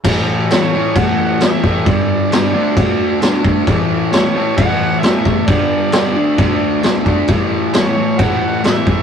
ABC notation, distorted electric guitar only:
X:1
M:4/4
L:1/8
Q:1/4=133
K:Amix
V:1 name="Distorted electric guitar" clef=bass
[A,,E,A,]2 [A,,E,A,] [A,,E,A,] [A,,E,A,]2 [A,,E,A,] [A,,E,A,] | [G,,D,G,]2 [G,,D,G,] [D,A,D] [D,A,D]2 [D,A,D] [D,A,D] | [A,,E,A,]2 [A,,E,A,] [A,,E,A,] [A,,E,A,]2 [A,,E,A,] [A,,E,A,] | [G,,D,G,]2 [G,,D,G,] [D,A,D] [D,A,D]2 [D,A,D] [D,A,D] |
[A,,E,A,]2 [A,,E,A,] [A,,E,A,] [A,,E,A,]2 [A,,E,A,] [A,,E,A,] |]